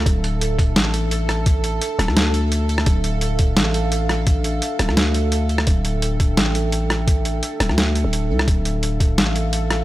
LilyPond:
<<
  \new Staff \with { instrumentName = "Analog synth pad" } { \time 4/4 \key d \minor \tempo 4 = 171 << { a''1~ | a''1 | f''1~ | f''1 |
g''1~ | g''1 | f''1 | } \\ { <d' a' e''>1~ | <d' a' e''>1~ | <d' a' e''>1~ | <d' a' e''>1~ |
<d' a' e''>1~ | <d' a' e''>1~ | <d' a' e''>1 | } >> }
  \new Staff \with { instrumentName = "Synth texture" } { \time 4/4 \key d \minor a'1~ | a'1~ | a'1~ | a'1~ |
a'1~ | a'1 | a'1 | }
  \new Staff \with { instrumentName = "808-style bass" } { \clef bass \time 4/4 \key d \minor d,,2 a,,2~ | a,,4 r8 d,,16 d,2~ d,16 | d,,2 a,,2~ | a,,4 r8 d,,16 d,2~ d,16 |
d,,2 a,,2~ | a,,4 r8 d,,16 d,4 d,,8. c,8 | d,,2 a,,2 | }
  \new DrumStaff \with { instrumentName = "Drums" } \drummode { \time 4/4 <hh bd>8 hh8 hh8 <hh bd>8 <hh sn>8 hh8 hh8 <hh ss>8 | <hh bd>8 hh8 hh8 <hh ss>16 ss16 <hh sn>8 hh8 hh8 hh16 ss16 | <hh bd>8 hh8 hh8 <hh bd>8 <hh sn>8 hh8 hh8 <hh ss>8 | <hh bd>8 hh8 hh8 <hh ss>16 ss16 <hh sn>8 hh8 hh8 hh16 ss16 |
<hh bd>8 hh8 hh8 <hh bd>8 <hh sn>8 hh8 hh8 <hh ss>8 | <hh bd>8 hh8 hh8 <hh ss>16 ss16 <hh sn>8 hh8 hh8. ss16 | <hh bd>8 hh8 hh8 <hh bd>8 <hh sn>8 hh8 hh8 <hh ss>8 | }
>>